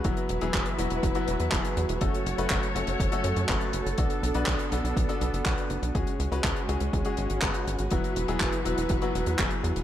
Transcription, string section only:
\new Staff \with { instrumentName = "String section" } { \time 4/4 \key e \mixolydian \tempo 4 = 122 <e e' fis' b'>1 | <fis a' cis''>1 | <b d'>1 | <gis cis' fis'>1 |
<e e' b'>1 | }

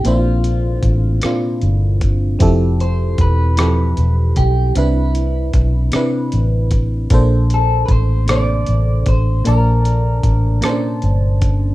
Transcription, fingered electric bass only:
\new Staff \with { instrumentName = "Fingered electric bass" } { \clef bass \time 6/8 \key bes \lydian \tempo 4. = 51 bes,,4 a,,8 r8 g,,4 | f,,4 e,,4 e,,8 ces,8 | c,4 b,,8 r8 a,,4 | bes,,4 a,,4 a,,8 a,,8 |
bes,,4 a,,8 r8 g,,4 | }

